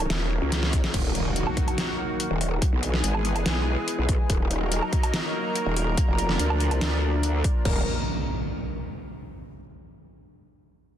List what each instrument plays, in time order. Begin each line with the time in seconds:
Already playing: analog synth pad D#3 F#3 A#3 C#4
0.10 wobble bass D#1, snare, closed hi-hat
0.42 wobble bass C#2
0.52 snare, closed hi-hat
0.63 snare
0.73 kick, open hi-hat
0.84 snare
0.94 wobble bass D#1, analog synth pad D#3 F#3 A#3 F#4, kick, closed hi-hat, crash, impact
1.15 wobble bass D#1, closed hi-hat
1.36 closed hi-hat
1.47 low woodblock
1.57 kick, closed hi-hat
1.68 closed hi-hat, low woodblock
1.78 snare, closed hi-hat
2.20 closed hi-hat
2.31 wobble bass D#1
2.41 open hi-hat
2.62 analog synth pad E3 G#3 B3 G#4, kick, closed hi-hat
2.73 wobble bass B1
2.83 closed hi-hat
2.94 snare
3.04 wobble bass G#1, closed hi-hat
3.15 low woodblock
3.25 closed hi-hat
3.36 closed hi-hat, low woodblock
3.46 wobble bass B1, snare, closed hi-hat
3.88 closed hi-hat
3.99 wobble bass B1
4.09 kick, open hi-hat
4.30 wobble bass D#1, analog synth pad F#3 A#3 D#4 A#4, kick, closed hi-hat
4.51 wobble bass D#1, closed hi-hat
4.72 closed hi-hat
4.82 low woodblock
4.93 kick, closed hi-hat
5.03 closed hi-hat, low woodblock
5.14 snare, closed hi-hat
5.55 closed hi-hat
5.66 wobble bass D#1
5.76 open hi-hat
5.97 analog synth pad F3 D4, kick, closed hi-hat
6.08 wobble bass F1
6.18 closed hi-hat
6.29 snare
6.39 wobble bass D2, closed hi-hat
6.50 low woodblock
6.60 closed hi-hat
6.71 closed hi-hat, low woodblock
6.81 wobble bass D2, snare, closed hi-hat
7.23 closed hi-hat
7.44 kick, open hi-hat
7.65 wobble bass D#1, kick, crash, impact